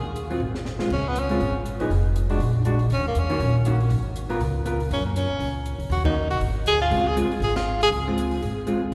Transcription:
0.00 0.38 D#2 medium
0.16 closed hi-hat soft
0.30 0.40 F#3 soft
0.30 0.40 C4 medium
0.30 0.40 F4 medium
0.30 open hi-hat soft
0.40 0.77 G#1 medium
0.55 snare soft
0.65 snare medium
0.79 0.89 C2 medium
0.79 0.89 G#3 medium
0.79 0.90 C4 medium
0.79 0.90 F4 medium
0.79 snare medium
0.90 1.37 C#2 medium
0.90 1.10 C#4 medium
0.90 kick medium
0.90 crash medium
1.08 1.21 B3 medium
1.16 1.56 C#4 medium
1.16 closed hi-hat medium
1.29 1.39 G#3 soft
1.29 1.40 C4 medium
1.29 1.40 F4 medium
1.29 open hi-hat soft
1.40 1.87 G#1 medium
1.40 open hi-hat soft
1.66 closed hi-hat soft
1.80 1.89 F3 medium
1.80 1.89 B3 medium
1.80 1.90 D#4 medium
1.80 1.90 G#4 medium
1.80 open hi-hat soft
1.90 2.37 F1 medium
1.90 open hi-hat soft
2.16 closed hi-hat medium
2.30 2.39 G#3 medium
2.30 2.39 D4 medium
2.30 2.40 F#4 medium
2.30 open hi-hat soft
2.38 2.87 A#1 medium
2.38 open hi-hat soft
2.65 2.78 G#3 soft
2.65 2.78 D4 medium
2.65 2.79 F#4 medium
2.65 closed hi-hat soft
2.79 open hi-hat soft
2.90 3.13 D#2 medium
2.90 3.05 C#4 medium
2.90 open hi-hat soft
3.08 3.21 A#3 medium
3.15 3.38 E2 medium
3.15 closed hi-hat medium
3.19 3.56 C#4 medium
3.29 3.39 D#3 medium
3.29 3.39 A#3 medium
3.29 3.39 C#4 medium
3.29 3.40 F#4 medium
3.29 open hi-hat soft
3.40 3.87 A#1 medium
3.40 open hi-hat soft
3.65 3.78 D#3 soft
3.65 3.78 A#3 soft
3.65 3.79 C#4 medium
3.65 3.79 F#4 medium
3.65 closed hi-hat soft
3.80 open hi-hat soft
3.90 4.37 G#1 medium
3.90 open hi-hat soft
4.16 closed hi-hat medium
4.29 4.39 B3 medium
4.29 4.39 F4 medium
4.29 4.40 A#4 medium
4.29 open hi-hat soft
4.40 4.88 C#2 medium
4.40 open hi-hat soft
4.66 4.78 B3 medium
4.66 4.79 F4 medium
4.66 4.79 A#4 medium
4.66 closed hi-hat soft
4.80 open hi-hat soft
4.91 5.27 F#2 medium
4.91 5.05 C#4 medium
4.91 open hi-hat soft
5.06 5.18 A#3 soft
5.16 5.55 C#4 medium
5.16 closed hi-hat medium
5.29 muted upright bass stroke soft
5.39 5.77 C#2 medium
5.39 open hi-hat soft
5.66 closed hi-hat soft
5.78 5.89 C#2 medium
5.78 open hi-hat soft
5.90 6.21 D#2 medium
5.90 6.05 F#4 medium
5.90 open hi-hat soft
6.04 6.14 D#3 medium
6.04 6.15 A#3 medium
6.04 6.15 C#4 medium
6.04 6.29 D#4 medium
6.04 6.15 F#4 medium
6.04 kick medium
6.04 ride medium
6.23 6.32 C#2 medium
6.30 6.40 A#1 medium
6.30 6.40 F#4 medium
6.30 open hi-hat soft
6.40 6.64 G#1 medium
6.40 open hi-hat soft
6.66 6.90 D2 medium
6.66 6.80 G#4 medium
6.66 closed hi-hat soft
6.80 7.08 F4 medium
6.80 open hi-hat soft
6.90 7.27 C#2 medium
6.90 7.04 G#3 soft
6.90 7.04 C4 medium
6.90 7.05 F4 medium
6.90 open hi-hat soft
7.07 7.17 G#4 medium
7.16 7.29 G#3 medium
7.16 7.29 C4 medium
7.16 7.30 F4 medium
7.16 closed hi-hat medium
7.30 muted upright bass stroke soft
7.30 open hi-hat soft
7.40 7.88 G#1 medium
7.40 7.56 G#4 medium
7.40 open hi-hat soft
7.56 7.79 F4 medium
7.56 snare medium
7.56 ride medium
7.81 7.89 G#4 medium
7.81 open hi-hat soft
7.91 8.39 C#2 medium
7.91 open hi-hat soft
8.07 8.40 G#3 medium
8.07 8.41 C4 medium
8.07 8.41 F4 medium
8.18 closed hi-hat medium
8.31 open hi-hat soft
8.42 8.90 G#1 medium
8.42 open hi-hat soft
8.67 8.80 G#3 medium
8.67 8.80 C4 medium
8.67 8.80 F4 medium
8.67 closed hi-hat soft

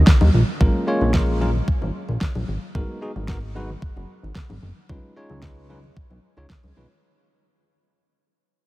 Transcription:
0.07 kick medium
0.07 snare loud
0.21 0.30 D#2 medium
0.21 high conga medium
0.34 0.43 A#1 medium
0.34 low conga medium
0.60 0.70 A#1 medium
0.60 0.84 G#3 medium
0.60 0.84 A#3 medium
0.60 0.85 C#4 medium
0.60 0.85 F4 medium
0.60 0.85 A#4 medium
0.60 kick loud
0.60 high conga medium
0.87 1.11 G#3 medium
0.87 1.11 A#3 medium
0.87 1.11 C#4 medium
0.87 1.11 F4 medium
0.87 1.12 C#5 medium
1.01 1.61 A#1 loud
1.01 high conga medium
1.14 1.38 G#3 medium
1.14 1.38 A#3 medium
1.14 1.38 C#4 medium
1.14 1.38 F4 medium
1.14 1.38 A#4 medium
1.14 kick loud
1.14 snare loud
1.41 1.50 G#3 medium
1.41 1.50 A#3 medium
1.41 1.50 C#4 medium
1.41 1.50 F4 medium
1.41 1.50 A#4 medium
1.41 high conga medium
1.55 low conga medium
1.68 kick loud
1.82 1.91 G#1 loud
1.82 high conga medium
2.09 2.17 A#1 medium
2.09 low conga medium
2.21 kick medium
2.21 snare loud
2.35 2.44 A#1 medium
2.35 high conga medium
2.48 2.58 G#1 medium
2.48 low conga medium
2.75 2.84 G#1 medium
2.75 2.99 G#3 medium
2.75 2.99 B3 medium
2.75 2.99 D#4 medium
2.75 2.99 F#4 medium
2.75 2.99 A#4 medium
2.75 kick loud
2.75 high conga medium
3.01 3.10 G#3 medium
3.01 3.10 B3 medium
3.01 3.11 D#4 medium
3.01 3.11 F#4 medium
3.01 3.11 G#4 medium
3.16 3.76 G#1 loud
3.16 high conga medium
3.28 3.37 G#3 medium
3.28 3.37 B3 medium
3.28 3.37 D#4 medium
3.28 3.38 F#4 medium
3.28 3.38 A#4 medium
3.28 kick medium
3.28 snare loud
3.55 3.69 G#3 medium
3.55 3.69 B3 medium
3.55 3.69 D#4 medium
3.55 3.70 F#4 medium
3.55 3.70 B4 loud
3.55 high conga medium
3.70 low conga medium
3.82 3.93 F#1 soft
3.82 kick loud
3.96 4.05 F#1 loud
3.96 high conga medium
4.23 4.32 G#1 medium
4.23 low conga medium
4.35 kick medium
4.35 snare loud
4.50 4.58 G#1 medium
4.50 high conga medium
4.62 4.72 F#1 medium
4.62 low conga medium
4.89 4.99 C#2 medium
4.89 5.13 G#3 medium
4.89 5.13 C#4 medium
4.89 5.13 D#4 medium
4.89 5.13 F4 medium
4.89 5.13 B4 medium
4.89 kick loud
4.89 high conga medium
5.16 5.40 G#3 medium
5.16 5.40 C#4 medium
5.16 5.40 D#4 medium
5.16 5.40 F4 medium
5.16 5.40 C#5 medium
5.30 5.90 C#2 loud
5.30 high conga medium
5.42 5.67 G#3 medium
5.42 5.67 C#4 medium
5.42 5.67 D#4 medium
5.42 5.67 F4 medium
5.42 5.67 B4 medium
5.42 kick medium
5.42 snare loud
5.69 5.78 G#3 medium
5.69 5.78 C#4 medium
5.69 5.78 D#4 medium
5.69 5.79 F4 medium
5.69 5.79 B4 medium
5.69 high conga medium
5.84 low conga medium
5.97 kick loud
6.11 6.19 B1 loud
6.11 high conga medium
6.37 6.46 C#2 medium
6.37 6.45 G#3 medium
6.37 6.45 C#4 medium
6.37 6.45 D#4 medium
6.37 6.45 F4 medium
6.37 6.46 C#5 medium
6.37 low conga medium
6.50 kick medium
6.50 snare loud
6.64 6.73 C#2 medium
6.64 high conga medium
6.76 6.86 B1 medium
6.76 6.85 G#3 medium
6.76 6.85 C#4 medium
6.76 6.86 D#4 medium
6.76 6.86 F4 medium
6.76 6.86 B4 medium
6.76 low conga medium

